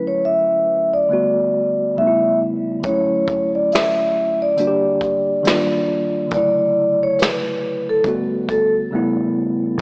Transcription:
0.00 1.05 D3 medium
0.00 1.06 F#3 medium
0.00 1.07 A3 soft
0.00 1.08 C#4 soft
0.00 1.09 E4 medium
0.07 0.22 C#5 medium
0.25 0.89 E5 medium
0.93 1.94 D5 medium
1.09 1.96 D3 medium
1.09 1.96 G3 medium
1.09 1.97 A3 soft
1.09 1.98 B3 medium
1.13 1.99 F#4 medium
1.96 2.84 C#3 medium
1.96 2.84 G3 medium
1.96 2.83 A3 medium
1.96 2.85 B3 soft
1.96 2.37 E5 medium
2.01 2.07 D#4 soft
2.07 2.88 E4 medium
2.80 4.52 D3 soft
2.80 2.91 F3 soft
2.80 closed hi-hat medium
2.84 4.55 A3 medium
2.84 4.56 C#4 soft
2.84 3.50 C#5 medium
2.84 kick loud
2.89 4.57 F#3 soft
2.89 4.57 E4 medium
3.27 kick medium
3.27 closed hi-hat soft
3.55 3.70 D5 medium
3.72 4.37 E5 medium
3.72 finger snap medium
3.72 snare loud
3.72 closed hi-hat medium
4.42 6.29 D5 medium
4.56 5.44 D3 medium
4.56 5.43 G3 medium
4.56 5.44 A#3 medium
4.56 5.45 D4 medium
4.56 closed hi-hat medium
4.61 4.67 F#4 medium
4.67 5.50 G4 medium
5.01 kick medium
5.01 closed hi-hat soft
5.43 6.31 D#3 medium
5.43 6.31 G3 medium
5.43 6.32 A#3 medium
5.43 6.33 D4 medium
5.43 closed hi-hat medium
5.47 6.33 F4 medium
5.47 finger snap medium
5.47 snare medium
6.27 8.00 D3 medium
6.27 8.01 F#3 soft
6.27 closed hi-hat medium
6.32 8.03 C#3 medium
6.32 8.02 A3 medium
6.32 6.98 D5 medium
6.32 kick loud
6.36 8.05 E4 medium
7.03 7.18 C#5 medium
7.19 7.84 B4 medium
7.19 finger snap medium
7.19 snare loud
7.19 closed hi-hat medium
7.89 8.05 A4 medium
8.04 8.92 D3 medium
8.04 8.91 G3 medium
8.04 8.92 A3 medium
8.04 8.93 B3 medium
8.04 kick medium
8.04 closed hi-hat medium
8.08 8.94 F#4 medium
8.49 8.73 A4 medium
8.49 kick medium
8.49 closed hi-hat soft
8.91 9.79 C#3 medium
8.91 9.79 G3 medium
8.91 9.79 A3 medium
8.91 9.81 B3 medium
8.95 9.81 E4 medium
9.78 9.81 D3 medium

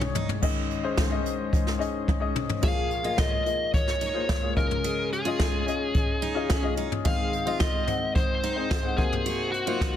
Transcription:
0.00 0.39 G#2 medium
0.00 0.38 D#3 medium
0.00 0.42 D#4 medium
0.00 0.43 G#4 medium
0.00 0.44 C#5 medium
0.00 mid tom medium
0.15 0.29 D#4 medium
0.15 floor tom loud
0.29 floor tom medium
0.42 2.59 G#2 medium
0.42 2.59 D#3 medium
0.42 0.80 C#4 medium
0.42 0.80 D#4 medium
0.42 0.80 G#4 medium
0.42 0.81 D#5 medium
0.42 kick loud
0.42 crash medium
0.71 closed hi-hat medium
0.83 1.09 C#4 medium
0.83 1.09 D#4 medium
0.83 1.09 G#4 medium
0.83 1.09 C5 medium
0.97 kick loud
0.97 snare loud
0.97 closed hi-hat medium
1.10 1.74 C#4 medium
1.10 1.74 D#4 medium
1.10 1.74 G#4 medium
1.10 1.74 D#5 medium
1.26 closed hi-hat medium
1.53 kick loud
1.53 closed hi-hat medium
1.67 snare soft
1.79 2.17 C#4 medium
1.79 2.17 D#4 medium
1.79 2.18 G#4 medium
1.79 2.18 D#5 medium
1.79 closed hi-hat medium
2.08 kick loud
2.08 high tom medium
2.20 2.59 C#4 medium
2.20 2.59 D#4 medium
2.20 2.59 G#4 medium
2.20 2.59 D#5 medium
2.36 mid tom medium
2.49 floor tom medium
2.62 4.52 A#2 medium
2.62 4.52 F3 medium
2.62 3.00 A#3 medium
2.62 3.00 F4 medium
2.62 3.01 G#4 medium
2.62 2.89 G#4 medium
2.62 3.01 C#5 medium
2.62 3.15 F5 medium
2.62 kick loud
2.62 closed hi-hat medium
2.91 closed hi-hat medium
3.03 3.42 A#3 medium
3.03 3.42 F4 medium
3.03 3.44 F4 medium
3.03 3.42 G#4 medium
3.03 3.42 D#5 medium
3.18 3.70 D#5 medium
3.18 kick loud
3.18 snare loud
3.18 closed hi-hat medium
3.45 4.08 A#3 medium
3.45 4.09 F4 medium
3.45 4.09 G#4 medium
3.45 4.09 D#5 medium
3.45 closed hi-hat medium
3.74 4.53 C#5 medium
3.74 kick loud
3.74 closed hi-hat medium
3.88 snare soft
4.01 4.28 D#4 medium
4.01 closed hi-hat medium
4.13 4.39 A#3 medium
4.13 4.40 F4 medium
4.13 4.40 G#4 medium
4.13 4.40 C5 medium
4.29 kick loud
4.29 snare loud
4.29 closed hi-hat medium
4.42 4.56 A#3 medium
4.42 4.55 F4 medium
4.42 4.55 G#4 medium
4.42 4.57 C#5 medium
4.56 6.73 C#3 medium
4.56 6.73 G#3 medium
4.56 5.19 C#4 medium
4.56 5.19 F4 medium
4.56 5.19 G#4 medium
4.56 5.08 A#4 medium
4.56 5.19 D#5 medium
4.56 kick medium
4.56 closed hi-hat medium
4.71 floor tom medium
4.84 5.11 G#4 medium
4.84 closed hi-hat medium
5.13 6.74 G#4 medium
5.13 closed hi-hat medium
5.25 5.63 C#4 medium
5.25 5.64 F4 medium
5.25 5.63 F4 medium
5.25 5.64 G#4 medium
5.25 5.64 D#5 medium
5.39 kick loud
5.39 snare loud
5.39 closed hi-hat medium
5.66 6.29 C#4 medium
5.66 6.30 F4 medium
5.66 6.30 G#4 medium
5.66 6.30 D#5 medium
5.66 closed hi-hat medium
5.95 kick loud
5.95 closed hi-hat medium
6.22 6.48 D#4 medium
6.22 closed hi-hat medium
6.35 6.60 C#4 medium
6.35 6.61 F4 medium
6.35 6.61 G#4 medium
6.35 6.61 D#5 medium
6.50 6.63 C#4 medium
6.50 6.76 G#5 medium
6.50 kick loud
6.50 snare loud
6.50 closed hi-hat medium
6.62 7.00 C#4 medium
6.62 7.01 F4 medium
6.62 7.01 G#4 medium
6.62 6.76 D#5 medium
6.77 6.90 D#4 medium
6.77 7.03 D#5 medium
6.77 closed hi-hat medium
6.92 floor tom medium
7.05 8.94 G#2 medium
7.05 8.94 D#3 medium
7.05 7.42 C4 medium
7.05 7.43 D#4 medium
7.05 7.31 G#4 medium
7.05 7.43 G#4 medium
7.05 7.43 D#5 medium
7.05 7.57 F5 loud
7.05 kick loud
7.05 closed hi-hat medium
7.33 closed hi-hat medium
7.45 7.83 C4 medium
7.45 7.83 D#4 medium
7.45 7.85 F4 medium
7.45 7.84 G#4 medium
7.45 7.84 D#5 medium
7.60 8.11 D#5 medium
7.60 kick loud
7.60 snare loud
7.60 closed hi-hat medium
7.87 8.50 C4 medium
7.87 8.50 D#4 medium
7.87 8.50 G#4 medium
7.87 8.51 F#5 medium
7.87 closed hi-hat medium
7.87 floor tom medium
8.15 9.00 C5 medium
8.15 kick loud
8.15 closed hi-hat medium
8.44 8.69 D#4 medium
8.44 closed hi-hat medium
8.56 8.81 C4 medium
8.56 8.82 D#4 medium
8.56 8.82 G#4 medium
8.56 8.82 C5 medium
8.71 kick loud
8.71 snare loud
8.71 closed hi-hat medium
8.83 8.97 C4 medium
8.83 8.96 D#4 medium
8.83 8.98 G#4 medium
8.83 8.98 F#5 medium
8.97 9.96 C3 medium
8.97 9.60 A#3 medium
8.97 9.60 D#4 medium
8.97 9.60 F#4 medium
8.97 9.51 G#4 medium
8.97 9.61 C5 medium
8.97 kick medium
8.97 closed hi-hat medium
9.13 floor tom medium
9.26 9.52 F#4 medium
9.26 closed hi-hat medium
9.52 9.96 F#4 medium
9.52 closed hi-hat medium
9.66 9.96 F#3 medium
9.66 9.96 A#3 medium
9.66 9.96 D#4 medium
9.66 9.96 F4 medium
9.66 9.96 C5 medium
9.81 kick loud
9.81 snare loud
9.81 closed hi-hat medium

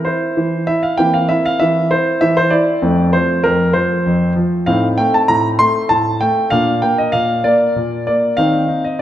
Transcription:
0.00 0.96 C4 soft
0.05 0.36 E4 medium
0.05 0.68 C5 medium
0.37 0.67 E3 medium
0.67 0.98 E4 medium
0.67 0.83 E5 medium
0.83 0.99 F5 medium
0.98 1.30 E3 medium
0.98 2.79 A#3 soft
0.98 2.79 C4 soft
0.98 1.14 G5 medium
1.14 1.30 F5 medium
1.29 1.60 E4 soft
1.29 1.45 E5 medium
1.46 1.61 F5 medium
1.60 1.91 E3 medium
1.60 1.91 E5 medium
1.91 2.21 E4 medium
1.91 2.22 C5 medium
2.21 2.52 E3 medium
2.21 2.37 E5 medium
2.37 2.52 C5 medium
2.50 2.82 E4 medium
2.50 3.09 D5 medium
2.82 3.13 F2 medium
2.82 4.64 A3 soft
2.82 4.64 C4 soft
3.13 3.44 F3 medium
3.13 3.44 C5 medium
3.44 3.75 F2 medium
3.44 3.72 A#4 medium
3.73 4.05 F3 medium
3.73 4.32 C5 medium
4.06 4.36 F2 medium
4.36 4.67 F3 medium
4.66 4.98 A2 medium
4.66 6.48 C4 medium
4.66 6.48 D#4 soft
4.66 4.85 F5 medium
4.98 5.28 A3 medium
4.98 5.14 G5 medium
5.14 5.30 A5 medium
5.28 5.59 A2 medium
5.28 5.47 A#5 loud
5.59 5.90 A3 medium
5.59 5.90 C6 loud
5.89 6.21 A2 medium
5.89 6.21 A5 loud
6.21 6.52 A3 medium
6.21 6.49 G5 medium
6.50 6.82 A#2 medium
6.50 6.81 A#3 soft
6.50 8.33 D4 soft
6.50 6.79 F5 medium
6.82 7.13 A#3 medium
6.82 6.98 G5 medium
6.98 7.14 D#5 medium
7.12 7.43 A#2 medium
7.12 7.44 F5 medium
7.44 7.75 A#3 medium
7.44 8.02 D5 medium
7.76 8.06 A#2 medium
8.07 8.37 A#3 soft
8.07 8.35 D5 medium
8.37 8.68 D#3 medium
8.37 9.02 C4 soft
8.37 8.66 D#4 soft
8.37 8.84 F5 medium
8.68 8.99 D#4 soft
8.84 9.01 D#5 medium

